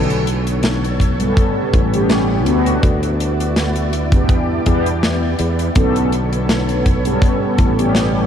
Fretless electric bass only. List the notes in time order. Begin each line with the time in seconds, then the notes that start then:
Already playing: B1
1.74 A1
2.47 D2
2.83 D2
4.29 E2
4.67 E2
5.39 E2
5.76 B1
7.59 A1